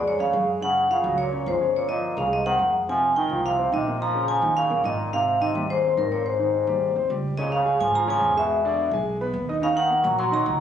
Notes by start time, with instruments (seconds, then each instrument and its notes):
Already playing: upright bass F2, grand piano G#3 G#4
0.07 trombone G#2, vibraphone C#5
0.19 upright bass F2, trombone C#3, grand piano C#4 C#5, vibraphone F5
0.33 upright bass F#2, grand piano G#3 G#4
0.61 grand piano C#3 C#4, trombone C#3, vibraphone F#5
0.90 trombone C#3, grand piano F3 F4, vibraphone F5
1.04 upright bass C#2, grand piano F#3 F#4
1.18 trombone A#2, vibraphone C#5
1.32 grand piano C#4 C#5
1.46 upright bass G1, trombone G#2, grand piano F3 F4, vibraphone C5
1.61 grand piano C#4 C#5
1.76 trombone A#2, vibraphone C#5
1.88 trombone A#2, grand piano F3 F4, vibraphone D#5
2.17 upright bass C2, trombone C#3, grand piano G#3 G#4, vibraphone F5
2.32 trombone C3, vibraphone D#5
2.46 trombone D#3, grand piano C4 C5, vibraphone F#5
2.59 upright bass F2, grand piano G#3 G#4
2.89 grand piano C3 C4, trombone F3, vibraphone G#5
3.16 trombone D#3, grand piano D#3 D#4, vibraphone G5
3.29 upright bass C2, grand piano F3 F4
3.45 trombone C3, vibraphone F5
3.59 grand piano C4 C5
3.72 upright bass A#1, trombone C3, grand piano D#3 D#4, vibraphone D#5
3.87 grand piano A#3 A#4
4.00 trombone F3, vibraphone A#5
4.15 grand piano C#3 C#4
4.28 trombone F3, vibraphone G#5
4.42 upright bass D#2, grand piano D#3 D#4
4.57 trombone C#3, vibraphone F5
4.70 upright bass A#1, grand piano A#3 A#4
4.84 upright bass G#1, trombone A#2, grand piano D#3 D#4, vibraphone D#5
5.13 trombone C3, grand piano C3 C4, vibraphone F5
5.41 trombone C3, grand piano D#3 D#4, vibraphone D#5
5.55 upright bass D#2, grand piano G3 G4
5.70 trombone G#2, vibraphone C5
5.84 grand piano C4 C5
5.97 upright bass G#1, trombone G2, grand piano D#3 D#4, vibraphone A#4
6.12 trombone A#2, grand piano C4 C5, vibraphone C#5
6.26 trombone G#2, vibraphone C5
6.39 grand piano D#3 D#4
6.67 upright bass D#2, grand piano G3 G4
6.95 upright bass D#2, grand piano C4 C5
7.10 upright bass C#2, grand piano G3 G4
7.37 trombone A#2, grand piano C#3 C#4 C#5, vibraphone D#5
7.52 trombone C#3, vibraphone F5
7.66 grand piano G#3 G#4 G#5
7.80 upright bass G#1, trombone F3, vibraphone G#5
7.94 grand piano F3 F4 F5, trombone F3, vibraphone A#5
8.07 grand piano C#3 C#4 C#5, trombone F3, vibraphone G#5
8.21 upright bass E1
8.37 trombone B2, grand piano G#3 G#4 G#5, vibraphone E5
8.65 grand piano D3 D4 D5
8.91 upright bass B1, grand piano G#3 G#4 G#5
9.21 grand piano B3 B4 B5
9.33 upright bass D#2
9.49 grand piano D#4 D#5 D#6
9.62 trombone C#3, grand piano D#3 D#4 D#5, vibraphone F5
9.77 trombone D#3, vibraphone F#5
9.90 grand piano A#3 A#4 A#5
10.04 upright bass A#1, trombone F#3, vibraphone A#5
10.18 grand piano F#3 F#4 F#5, trombone F#3, vibraphone C6
10.32 grand piano D#3 D#4 D#5, trombone F#3, vibraphone A#5
10.46 upright bass C#2